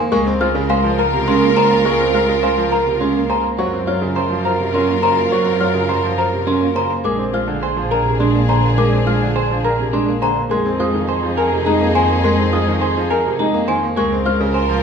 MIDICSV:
0, 0, Header, 1, 8, 480
1, 0, Start_track
1, 0, Tempo, 576923
1, 102, Time_signature, 3, 2, 24, 8
1, 12337, End_track
2, 0, Start_track
2, 0, Title_t, "Celesta"
2, 0, Program_c, 0, 8
2, 99, Note_on_c, 0, 85, 86
2, 257, Note_off_c, 0, 85, 0
2, 340, Note_on_c, 0, 89, 84
2, 498, Note_off_c, 0, 89, 0
2, 580, Note_on_c, 0, 77, 106
2, 738, Note_off_c, 0, 77, 0
2, 827, Note_on_c, 0, 82, 77
2, 980, Note_off_c, 0, 82, 0
2, 1063, Note_on_c, 0, 84, 77
2, 1219, Note_off_c, 0, 84, 0
2, 1303, Note_on_c, 0, 82, 91
2, 1459, Note_off_c, 0, 82, 0
2, 1544, Note_on_c, 0, 85, 60
2, 1699, Note_off_c, 0, 85, 0
2, 1786, Note_on_c, 0, 89, 62
2, 1940, Note_off_c, 0, 89, 0
2, 2026, Note_on_c, 0, 77, 87
2, 2180, Note_off_c, 0, 77, 0
2, 2266, Note_on_c, 0, 82, 63
2, 2420, Note_off_c, 0, 82, 0
2, 2504, Note_on_c, 0, 84, 54
2, 2659, Note_off_c, 0, 84, 0
2, 2746, Note_on_c, 0, 82, 74
2, 2900, Note_off_c, 0, 82, 0
2, 2984, Note_on_c, 0, 85, 62
2, 3139, Note_off_c, 0, 85, 0
2, 3225, Note_on_c, 0, 89, 59
2, 3379, Note_off_c, 0, 89, 0
2, 3706, Note_on_c, 0, 82, 68
2, 3860, Note_off_c, 0, 82, 0
2, 3947, Note_on_c, 0, 84, 60
2, 4100, Note_off_c, 0, 84, 0
2, 4186, Note_on_c, 0, 82, 78
2, 4340, Note_off_c, 0, 82, 0
2, 4428, Note_on_c, 0, 85, 63
2, 4581, Note_off_c, 0, 85, 0
2, 4663, Note_on_c, 0, 89, 67
2, 4819, Note_off_c, 0, 89, 0
2, 5147, Note_on_c, 0, 82, 68
2, 5300, Note_off_c, 0, 82, 0
2, 5387, Note_on_c, 0, 84, 64
2, 5540, Note_off_c, 0, 84, 0
2, 5625, Note_on_c, 0, 82, 85
2, 5780, Note_off_c, 0, 82, 0
2, 5865, Note_on_c, 0, 86, 64
2, 6019, Note_off_c, 0, 86, 0
2, 6108, Note_on_c, 0, 89, 62
2, 6260, Note_off_c, 0, 89, 0
2, 6586, Note_on_c, 0, 82, 68
2, 6740, Note_off_c, 0, 82, 0
2, 6823, Note_on_c, 0, 84, 60
2, 6979, Note_off_c, 0, 84, 0
2, 7063, Note_on_c, 0, 82, 81
2, 7219, Note_off_c, 0, 82, 0
2, 7304, Note_on_c, 0, 86, 67
2, 7459, Note_off_c, 0, 86, 0
2, 7546, Note_on_c, 0, 89, 63
2, 7700, Note_off_c, 0, 89, 0
2, 8026, Note_on_c, 0, 82, 65
2, 8180, Note_off_c, 0, 82, 0
2, 8266, Note_on_c, 0, 84, 57
2, 8420, Note_off_c, 0, 84, 0
2, 8507, Note_on_c, 0, 82, 90
2, 8660, Note_off_c, 0, 82, 0
2, 8746, Note_on_c, 0, 84, 70
2, 8900, Note_off_c, 0, 84, 0
2, 8987, Note_on_c, 0, 87, 69
2, 9140, Note_off_c, 0, 87, 0
2, 9466, Note_on_c, 0, 80, 75
2, 9620, Note_off_c, 0, 80, 0
2, 9705, Note_on_c, 0, 82, 69
2, 9860, Note_off_c, 0, 82, 0
2, 9946, Note_on_c, 0, 80, 96
2, 10100, Note_off_c, 0, 80, 0
2, 10184, Note_on_c, 0, 84, 64
2, 10339, Note_off_c, 0, 84, 0
2, 10424, Note_on_c, 0, 87, 69
2, 10579, Note_off_c, 0, 87, 0
2, 10904, Note_on_c, 0, 80, 72
2, 11059, Note_off_c, 0, 80, 0
2, 11147, Note_on_c, 0, 82, 66
2, 11300, Note_off_c, 0, 82, 0
2, 11384, Note_on_c, 0, 80, 95
2, 11539, Note_off_c, 0, 80, 0
2, 11626, Note_on_c, 0, 85, 70
2, 11780, Note_off_c, 0, 85, 0
2, 11865, Note_on_c, 0, 89, 80
2, 12019, Note_off_c, 0, 89, 0
2, 12337, End_track
3, 0, Start_track
3, 0, Title_t, "Marimba"
3, 0, Program_c, 1, 12
3, 100, Note_on_c, 1, 70, 93
3, 258, Note_off_c, 1, 70, 0
3, 339, Note_on_c, 1, 72, 79
3, 498, Note_off_c, 1, 72, 0
3, 579, Note_on_c, 1, 80, 73
3, 737, Note_off_c, 1, 80, 0
3, 821, Note_on_c, 1, 70, 98
3, 978, Note_off_c, 1, 70, 0
3, 1057, Note_on_c, 1, 68, 66
3, 1217, Note_off_c, 1, 68, 0
3, 1301, Note_on_c, 1, 80, 62
3, 1458, Note_off_c, 1, 80, 0
3, 1542, Note_on_c, 1, 70, 73
3, 1699, Note_off_c, 1, 70, 0
3, 1785, Note_on_c, 1, 72, 61
3, 1939, Note_off_c, 1, 72, 0
3, 2021, Note_on_c, 1, 80, 58
3, 2178, Note_off_c, 1, 80, 0
3, 2260, Note_on_c, 1, 70, 86
3, 2418, Note_off_c, 1, 70, 0
3, 2504, Note_on_c, 1, 68, 55
3, 2659, Note_off_c, 1, 68, 0
3, 2741, Note_on_c, 1, 80, 57
3, 2898, Note_off_c, 1, 80, 0
3, 2983, Note_on_c, 1, 72, 67
3, 3139, Note_off_c, 1, 72, 0
3, 3223, Note_on_c, 1, 73, 64
3, 3379, Note_off_c, 1, 73, 0
3, 3458, Note_on_c, 1, 82, 58
3, 3617, Note_off_c, 1, 82, 0
3, 3704, Note_on_c, 1, 72, 75
3, 3859, Note_off_c, 1, 72, 0
3, 3942, Note_on_c, 1, 70, 64
3, 4098, Note_off_c, 1, 70, 0
3, 4177, Note_on_c, 1, 82, 66
3, 4337, Note_off_c, 1, 82, 0
3, 4418, Note_on_c, 1, 72, 65
3, 4577, Note_off_c, 1, 72, 0
3, 4664, Note_on_c, 1, 73, 57
3, 4819, Note_off_c, 1, 73, 0
3, 4901, Note_on_c, 1, 82, 56
3, 5058, Note_off_c, 1, 82, 0
3, 5144, Note_on_c, 1, 72, 84
3, 5299, Note_off_c, 1, 72, 0
3, 5382, Note_on_c, 1, 70, 55
3, 5538, Note_off_c, 1, 70, 0
3, 5620, Note_on_c, 1, 82, 69
3, 5778, Note_off_c, 1, 82, 0
3, 5860, Note_on_c, 1, 70, 68
3, 6018, Note_off_c, 1, 70, 0
3, 6104, Note_on_c, 1, 72, 66
3, 6259, Note_off_c, 1, 72, 0
3, 6347, Note_on_c, 1, 80, 58
3, 6500, Note_off_c, 1, 80, 0
3, 6583, Note_on_c, 1, 70, 83
3, 6739, Note_off_c, 1, 70, 0
3, 6829, Note_on_c, 1, 68, 61
3, 6981, Note_off_c, 1, 68, 0
3, 7068, Note_on_c, 1, 80, 55
3, 7220, Note_off_c, 1, 80, 0
3, 7305, Note_on_c, 1, 70, 75
3, 7459, Note_off_c, 1, 70, 0
3, 7543, Note_on_c, 1, 72, 64
3, 7699, Note_off_c, 1, 72, 0
3, 7785, Note_on_c, 1, 80, 60
3, 7939, Note_off_c, 1, 80, 0
3, 8025, Note_on_c, 1, 70, 85
3, 8180, Note_off_c, 1, 70, 0
3, 8263, Note_on_c, 1, 68, 59
3, 8419, Note_off_c, 1, 68, 0
3, 8502, Note_on_c, 1, 80, 66
3, 8658, Note_off_c, 1, 80, 0
3, 8736, Note_on_c, 1, 70, 74
3, 8896, Note_off_c, 1, 70, 0
3, 8979, Note_on_c, 1, 72, 66
3, 9137, Note_off_c, 1, 72, 0
3, 9222, Note_on_c, 1, 80, 62
3, 9378, Note_off_c, 1, 80, 0
3, 9466, Note_on_c, 1, 70, 96
3, 9620, Note_off_c, 1, 70, 0
3, 9706, Note_on_c, 1, 68, 67
3, 9860, Note_off_c, 1, 68, 0
3, 9950, Note_on_c, 1, 80, 65
3, 10101, Note_off_c, 1, 80, 0
3, 10183, Note_on_c, 1, 70, 77
3, 10339, Note_off_c, 1, 70, 0
3, 10422, Note_on_c, 1, 72, 65
3, 10578, Note_off_c, 1, 72, 0
3, 10662, Note_on_c, 1, 80, 70
3, 10819, Note_off_c, 1, 80, 0
3, 10907, Note_on_c, 1, 70, 89
3, 11060, Note_off_c, 1, 70, 0
3, 11144, Note_on_c, 1, 68, 72
3, 11299, Note_off_c, 1, 68, 0
3, 11380, Note_on_c, 1, 80, 70
3, 11538, Note_off_c, 1, 80, 0
3, 11626, Note_on_c, 1, 70, 77
3, 11780, Note_off_c, 1, 70, 0
3, 11865, Note_on_c, 1, 72, 74
3, 12019, Note_off_c, 1, 72, 0
3, 12103, Note_on_c, 1, 80, 61
3, 12259, Note_off_c, 1, 80, 0
3, 12337, End_track
4, 0, Start_track
4, 0, Title_t, "French horn"
4, 0, Program_c, 2, 60
4, 104, Note_on_c, 2, 70, 85
4, 2830, Note_off_c, 2, 70, 0
4, 2989, Note_on_c, 2, 70, 78
4, 5713, Note_off_c, 2, 70, 0
4, 5863, Note_on_c, 2, 68, 63
4, 8590, Note_off_c, 2, 68, 0
4, 8743, Note_on_c, 2, 68, 64
4, 11470, Note_off_c, 2, 68, 0
4, 11622, Note_on_c, 2, 70, 83
4, 12337, Note_off_c, 2, 70, 0
4, 12337, End_track
5, 0, Start_track
5, 0, Title_t, "Clean electric guitar"
5, 0, Program_c, 3, 27
5, 102, Note_on_c, 3, 68, 82
5, 259, Note_off_c, 3, 68, 0
5, 342, Note_on_c, 3, 65, 78
5, 499, Note_off_c, 3, 65, 0
5, 582, Note_on_c, 3, 72, 101
5, 738, Note_off_c, 3, 72, 0
5, 823, Note_on_c, 3, 70, 84
5, 979, Note_off_c, 3, 70, 0
5, 1064, Note_on_c, 3, 61, 78
5, 1219, Note_off_c, 3, 61, 0
5, 1303, Note_on_c, 3, 72, 82
5, 1459, Note_off_c, 3, 72, 0
5, 1544, Note_on_c, 3, 68, 61
5, 1699, Note_off_c, 3, 68, 0
5, 1782, Note_on_c, 3, 65, 66
5, 1938, Note_off_c, 3, 65, 0
5, 2022, Note_on_c, 3, 72, 77
5, 2178, Note_off_c, 3, 72, 0
5, 2262, Note_on_c, 3, 70, 65
5, 2418, Note_off_c, 3, 70, 0
5, 2502, Note_on_c, 3, 61, 57
5, 2658, Note_off_c, 3, 61, 0
5, 2742, Note_on_c, 3, 72, 68
5, 2899, Note_off_c, 3, 72, 0
5, 2982, Note_on_c, 3, 66, 63
5, 3138, Note_off_c, 3, 66, 0
5, 3223, Note_on_c, 3, 65, 69
5, 3379, Note_off_c, 3, 65, 0
5, 3463, Note_on_c, 3, 72, 84
5, 3619, Note_off_c, 3, 72, 0
5, 3703, Note_on_c, 3, 70, 69
5, 3859, Note_off_c, 3, 70, 0
5, 3943, Note_on_c, 3, 61, 63
5, 4099, Note_off_c, 3, 61, 0
5, 4184, Note_on_c, 3, 72, 82
5, 4339, Note_off_c, 3, 72, 0
5, 4426, Note_on_c, 3, 66, 62
5, 4580, Note_off_c, 3, 66, 0
5, 4665, Note_on_c, 3, 65, 68
5, 4820, Note_off_c, 3, 65, 0
5, 4902, Note_on_c, 3, 72, 82
5, 5059, Note_off_c, 3, 72, 0
5, 5141, Note_on_c, 3, 70, 64
5, 5298, Note_off_c, 3, 70, 0
5, 5383, Note_on_c, 3, 61, 69
5, 5539, Note_off_c, 3, 61, 0
5, 5624, Note_on_c, 3, 72, 75
5, 5779, Note_off_c, 3, 72, 0
5, 5865, Note_on_c, 3, 68, 64
5, 6020, Note_off_c, 3, 68, 0
5, 6105, Note_on_c, 3, 65, 64
5, 6259, Note_off_c, 3, 65, 0
5, 6346, Note_on_c, 3, 72, 76
5, 6500, Note_off_c, 3, 72, 0
5, 6584, Note_on_c, 3, 70, 68
5, 6739, Note_off_c, 3, 70, 0
5, 6824, Note_on_c, 3, 62, 62
5, 6979, Note_off_c, 3, 62, 0
5, 7065, Note_on_c, 3, 72, 79
5, 7220, Note_off_c, 3, 72, 0
5, 7304, Note_on_c, 3, 68, 66
5, 7459, Note_off_c, 3, 68, 0
5, 7544, Note_on_c, 3, 65, 68
5, 7699, Note_off_c, 3, 65, 0
5, 7785, Note_on_c, 3, 72, 84
5, 7940, Note_off_c, 3, 72, 0
5, 8025, Note_on_c, 3, 70, 68
5, 8180, Note_off_c, 3, 70, 0
5, 8263, Note_on_c, 3, 62, 71
5, 8419, Note_off_c, 3, 62, 0
5, 8503, Note_on_c, 3, 72, 81
5, 8659, Note_off_c, 3, 72, 0
5, 8743, Note_on_c, 3, 68, 63
5, 8899, Note_off_c, 3, 68, 0
5, 8984, Note_on_c, 3, 65, 67
5, 9139, Note_off_c, 3, 65, 0
5, 9224, Note_on_c, 3, 72, 81
5, 9379, Note_off_c, 3, 72, 0
5, 9463, Note_on_c, 3, 70, 69
5, 9619, Note_off_c, 3, 70, 0
5, 9703, Note_on_c, 3, 63, 66
5, 9859, Note_off_c, 3, 63, 0
5, 9944, Note_on_c, 3, 72, 83
5, 10099, Note_off_c, 3, 72, 0
5, 10184, Note_on_c, 3, 68, 67
5, 10339, Note_off_c, 3, 68, 0
5, 10423, Note_on_c, 3, 65, 63
5, 10579, Note_off_c, 3, 65, 0
5, 10662, Note_on_c, 3, 72, 86
5, 10818, Note_off_c, 3, 72, 0
5, 10902, Note_on_c, 3, 70, 77
5, 11058, Note_off_c, 3, 70, 0
5, 11142, Note_on_c, 3, 63, 64
5, 11298, Note_off_c, 3, 63, 0
5, 11380, Note_on_c, 3, 72, 78
5, 11538, Note_off_c, 3, 72, 0
5, 11618, Note_on_c, 3, 68, 71
5, 11777, Note_off_c, 3, 68, 0
5, 11860, Note_on_c, 3, 65, 66
5, 12018, Note_off_c, 3, 65, 0
5, 12100, Note_on_c, 3, 72, 84
5, 12258, Note_off_c, 3, 72, 0
5, 12337, End_track
6, 0, Start_track
6, 0, Title_t, "String section"
6, 0, Program_c, 4, 48
6, 100, Note_on_c, 4, 70, 89
6, 101, Note_on_c, 4, 65, 88
6, 2828, Note_off_c, 4, 70, 0
6, 2829, Note_off_c, 4, 65, 0
6, 2982, Note_on_c, 4, 65, 66
6, 2985, Note_on_c, 4, 70, 65
6, 5709, Note_off_c, 4, 65, 0
6, 5711, Note_off_c, 4, 70, 0
6, 5861, Note_on_c, 4, 62, 63
6, 5861, Note_on_c, 4, 68, 67
6, 8588, Note_off_c, 4, 68, 0
6, 8589, Note_off_c, 4, 62, 0
6, 8741, Note_on_c, 4, 63, 68
6, 8741, Note_on_c, 4, 68, 72
6, 11468, Note_off_c, 4, 63, 0
6, 11468, Note_off_c, 4, 68, 0
6, 11621, Note_on_c, 4, 70, 80
6, 11623, Note_on_c, 4, 65, 80
6, 12337, Note_off_c, 4, 65, 0
6, 12337, Note_off_c, 4, 70, 0
6, 12337, End_track
7, 0, Start_track
7, 0, Title_t, "Grand piano"
7, 0, Program_c, 5, 0
7, 0, Note_on_c, 5, 58, 93
7, 98, Note_on_c, 5, 56, 106
7, 138, Note_off_c, 5, 58, 0
7, 222, Note_on_c, 5, 60, 88
7, 257, Note_off_c, 5, 56, 0
7, 341, Note_on_c, 5, 56, 82
7, 378, Note_off_c, 5, 60, 0
7, 457, Note_on_c, 5, 49, 95
7, 498, Note_off_c, 5, 56, 0
7, 580, Note_on_c, 5, 56, 76
7, 617, Note_off_c, 5, 49, 0
7, 701, Note_on_c, 5, 53, 82
7, 738, Note_off_c, 5, 56, 0
7, 858, Note_off_c, 5, 53, 0
7, 942, Note_on_c, 5, 48, 86
7, 1061, Note_on_c, 5, 56, 74
7, 1098, Note_off_c, 5, 48, 0
7, 1181, Note_on_c, 5, 58, 91
7, 1218, Note_off_c, 5, 56, 0
7, 1303, Note_on_c, 5, 49, 68
7, 1338, Note_off_c, 5, 58, 0
7, 1423, Note_on_c, 5, 58, 76
7, 1459, Note_off_c, 5, 49, 0
7, 1540, Note_on_c, 5, 56, 84
7, 1579, Note_off_c, 5, 58, 0
7, 1662, Note_on_c, 5, 60, 66
7, 1698, Note_off_c, 5, 56, 0
7, 1782, Note_on_c, 5, 56, 72
7, 1819, Note_off_c, 5, 60, 0
7, 1903, Note_on_c, 5, 49, 72
7, 1938, Note_off_c, 5, 56, 0
7, 2025, Note_on_c, 5, 56, 59
7, 2059, Note_off_c, 5, 49, 0
7, 2143, Note_on_c, 5, 53, 70
7, 2179, Note_off_c, 5, 56, 0
7, 2299, Note_off_c, 5, 53, 0
7, 2387, Note_on_c, 5, 48, 70
7, 2504, Note_on_c, 5, 56, 55
7, 2540, Note_off_c, 5, 48, 0
7, 2624, Note_on_c, 5, 58, 73
7, 2659, Note_off_c, 5, 56, 0
7, 2745, Note_on_c, 5, 49, 59
7, 2779, Note_off_c, 5, 58, 0
7, 2862, Note_on_c, 5, 58, 66
7, 2900, Note_off_c, 5, 49, 0
7, 2984, Note_on_c, 5, 54, 84
7, 3018, Note_off_c, 5, 58, 0
7, 3106, Note_on_c, 5, 60, 65
7, 3139, Note_off_c, 5, 54, 0
7, 3223, Note_on_c, 5, 54, 67
7, 3260, Note_off_c, 5, 60, 0
7, 3344, Note_on_c, 5, 49, 76
7, 3379, Note_off_c, 5, 54, 0
7, 3464, Note_on_c, 5, 54, 55
7, 3499, Note_off_c, 5, 49, 0
7, 3578, Note_on_c, 5, 53, 73
7, 3619, Note_off_c, 5, 54, 0
7, 3737, Note_off_c, 5, 53, 0
7, 3822, Note_on_c, 5, 48, 66
7, 3945, Note_on_c, 5, 54, 70
7, 3979, Note_off_c, 5, 48, 0
7, 4063, Note_on_c, 5, 58, 73
7, 4099, Note_off_c, 5, 54, 0
7, 4182, Note_on_c, 5, 49, 62
7, 4219, Note_off_c, 5, 58, 0
7, 4305, Note_on_c, 5, 58, 66
7, 4339, Note_off_c, 5, 49, 0
7, 4420, Note_on_c, 5, 54, 82
7, 4460, Note_off_c, 5, 58, 0
7, 4541, Note_on_c, 5, 60, 65
7, 4578, Note_off_c, 5, 54, 0
7, 4661, Note_on_c, 5, 54, 68
7, 4698, Note_off_c, 5, 60, 0
7, 4779, Note_on_c, 5, 49, 72
7, 4818, Note_off_c, 5, 54, 0
7, 4901, Note_on_c, 5, 54, 63
7, 4937, Note_off_c, 5, 49, 0
7, 5021, Note_on_c, 5, 53, 69
7, 5058, Note_off_c, 5, 54, 0
7, 5178, Note_off_c, 5, 53, 0
7, 5261, Note_on_c, 5, 48, 67
7, 5380, Note_on_c, 5, 54, 59
7, 5418, Note_off_c, 5, 48, 0
7, 5498, Note_on_c, 5, 58, 66
7, 5538, Note_off_c, 5, 54, 0
7, 5621, Note_on_c, 5, 49, 65
7, 5657, Note_off_c, 5, 58, 0
7, 5738, Note_on_c, 5, 58, 69
7, 5778, Note_off_c, 5, 49, 0
7, 5860, Note_on_c, 5, 56, 78
7, 5897, Note_off_c, 5, 58, 0
7, 5979, Note_on_c, 5, 60, 69
7, 6018, Note_off_c, 5, 56, 0
7, 6102, Note_on_c, 5, 56, 61
7, 6137, Note_off_c, 5, 60, 0
7, 6219, Note_on_c, 5, 50, 80
7, 6258, Note_off_c, 5, 56, 0
7, 6377, Note_off_c, 5, 50, 0
7, 6461, Note_on_c, 5, 53, 66
7, 6618, Note_off_c, 5, 53, 0
7, 6700, Note_on_c, 5, 48, 66
7, 6818, Note_on_c, 5, 56, 64
7, 6858, Note_off_c, 5, 48, 0
7, 6942, Note_on_c, 5, 58, 72
7, 6977, Note_off_c, 5, 56, 0
7, 7063, Note_on_c, 5, 50, 63
7, 7098, Note_off_c, 5, 58, 0
7, 7183, Note_on_c, 5, 58, 67
7, 7219, Note_off_c, 5, 50, 0
7, 7302, Note_on_c, 5, 56, 78
7, 7339, Note_off_c, 5, 58, 0
7, 7426, Note_on_c, 5, 60, 65
7, 7458, Note_off_c, 5, 56, 0
7, 7547, Note_on_c, 5, 56, 70
7, 7580, Note_off_c, 5, 60, 0
7, 7668, Note_on_c, 5, 50, 73
7, 7700, Note_off_c, 5, 56, 0
7, 7820, Note_off_c, 5, 50, 0
7, 7909, Note_on_c, 5, 53, 71
7, 8061, Note_off_c, 5, 53, 0
7, 8148, Note_on_c, 5, 48, 67
7, 8266, Note_on_c, 5, 56, 67
7, 8300, Note_off_c, 5, 48, 0
7, 8388, Note_on_c, 5, 58, 74
7, 8420, Note_off_c, 5, 56, 0
7, 8505, Note_on_c, 5, 50, 66
7, 8540, Note_off_c, 5, 58, 0
7, 8624, Note_on_c, 5, 58, 63
7, 8659, Note_off_c, 5, 50, 0
7, 8745, Note_on_c, 5, 56, 75
7, 8779, Note_off_c, 5, 58, 0
7, 8868, Note_on_c, 5, 60, 76
7, 8900, Note_off_c, 5, 56, 0
7, 8985, Note_on_c, 5, 56, 69
7, 9021, Note_off_c, 5, 60, 0
7, 9104, Note_on_c, 5, 51, 74
7, 9140, Note_off_c, 5, 56, 0
7, 9259, Note_off_c, 5, 51, 0
7, 9343, Note_on_c, 5, 53, 70
7, 9499, Note_off_c, 5, 53, 0
7, 9587, Note_on_c, 5, 48, 74
7, 9707, Note_on_c, 5, 56, 74
7, 9740, Note_off_c, 5, 48, 0
7, 9827, Note_on_c, 5, 58, 86
7, 9860, Note_off_c, 5, 56, 0
7, 9946, Note_on_c, 5, 51, 67
7, 9980, Note_off_c, 5, 58, 0
7, 10067, Note_on_c, 5, 58, 68
7, 10100, Note_off_c, 5, 51, 0
7, 10190, Note_on_c, 5, 56, 94
7, 10220, Note_off_c, 5, 58, 0
7, 10308, Note_on_c, 5, 60, 73
7, 10341, Note_off_c, 5, 56, 0
7, 10429, Note_on_c, 5, 56, 74
7, 10461, Note_off_c, 5, 60, 0
7, 10549, Note_on_c, 5, 51, 89
7, 10581, Note_off_c, 5, 56, 0
7, 10701, Note_off_c, 5, 51, 0
7, 10792, Note_on_c, 5, 53, 78
7, 10942, Note_off_c, 5, 53, 0
7, 11031, Note_on_c, 5, 48, 75
7, 11147, Note_on_c, 5, 56, 67
7, 11181, Note_off_c, 5, 48, 0
7, 11265, Note_on_c, 5, 58, 86
7, 11300, Note_off_c, 5, 56, 0
7, 11388, Note_on_c, 5, 51, 81
7, 11420, Note_off_c, 5, 58, 0
7, 11508, Note_on_c, 5, 58, 81
7, 11541, Note_off_c, 5, 51, 0
7, 11624, Note_on_c, 5, 56, 93
7, 11660, Note_off_c, 5, 58, 0
7, 11748, Note_on_c, 5, 60, 75
7, 11779, Note_off_c, 5, 56, 0
7, 11869, Note_on_c, 5, 56, 77
7, 11900, Note_off_c, 5, 60, 0
7, 11985, Note_on_c, 5, 49, 89
7, 12021, Note_off_c, 5, 56, 0
7, 12140, Note_off_c, 5, 49, 0
7, 12224, Note_on_c, 5, 53, 80
7, 12337, Note_off_c, 5, 53, 0
7, 12337, End_track
8, 0, Start_track
8, 0, Title_t, "Double bass section"
8, 0, Program_c, 6, 48
8, 101, Note_on_c, 6, 37, 77
8, 2852, Note_off_c, 6, 37, 0
8, 2980, Note_on_c, 6, 42, 60
8, 5732, Note_off_c, 6, 42, 0
8, 5862, Note_on_c, 6, 34, 60
8, 8613, Note_off_c, 6, 34, 0
8, 8742, Note_on_c, 6, 41, 66
8, 11493, Note_off_c, 6, 41, 0
8, 11626, Note_on_c, 6, 37, 69
8, 12337, Note_off_c, 6, 37, 0
8, 12337, End_track
0, 0, End_of_file